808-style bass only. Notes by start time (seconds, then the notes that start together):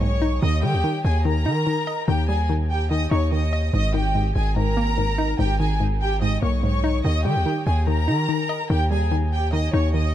Already playing: B1
0.42 D#2
0.63 D#3
0.73 D#2
1.05 D#2
1.46 D#3
2.08 D#2
3.11 D#2
3.73 G#1
4.36 G#1
5.39 G#1
6.42 B1
7.04 D#2
7.25 D#3
7.36 D#2
7.67 D#2
8.08 D#3
8.70 D#2
9.73 D#2